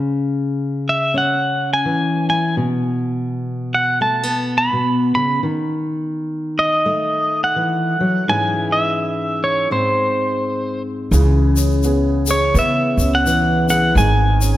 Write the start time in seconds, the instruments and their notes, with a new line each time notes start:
Already playing: steel-string acoustic guitar C#3
0.89 pedal steel guitar E5
1.14 steel-string acoustic guitar C#4, pedal steel guitar F#5
1.73 pedal steel guitar G#5
1.85 steel-string acoustic guitar E3
2.29 steel-string acoustic guitar E4, pedal steel guitar G#5
2.57 steel-string acoustic guitar B2
3.75 pedal steel guitar F#5
4.01 steel-string acoustic guitar A3, pedal steel guitar A5
4.23 steel-string acoustic guitar B3
4.58 pedal steel guitar B5
4.73 steel-string acoustic guitar B2
5.15 steel-string acoustic guitar C#3, pedal steel guitar B5
5.43 steel-string acoustic guitar D#3
6.59 pedal steel guitar D#5
6.86 steel-string acoustic guitar A3
7.44 pedal steel guitar F#5
7.56 steel-string acoustic guitar E3
8.00 steel-string acoustic guitar F#3
8.28 steel-string acoustic guitar G#2 E3 C#4 E4 G#4, pedal steel guitar G#5
8.72 pedal steel guitar E5
9.44 pedal steel guitar C#5
9.70 steel-string acoustic guitar G#2 G#3 C4, pedal steel guitar C5
11.11 upright bass C#2, steel-string acoustic guitar C#3, upright piano E3 G#4, shaker
11.57 upright piano C#4, shaker
11.71 shaker
11.83 upright piano B3 C#4 G#4, shaker
12.27 upright piano G#4, shaker
12.31 pedal steel guitar C#5
12.54 upright bass C#3, steel-string acoustic guitar B3, upright piano B3, shaker
12.59 pedal steel guitar E5
12.97 upright bass C#2, upright piano C#4, shaker
13.15 pedal steel guitar F#5
13.26 steel-string acoustic guitar E3, shaker
13.69 steel-string acoustic guitar E4, upright piano G#4, pedal steel guitar F#5, shaker
13.95 upright bass G#1, steel-string acoustic guitar G#2, upright piano D#3 G#4, pedal steel guitar G#5, shaker
14.41 upright piano C#4, shaker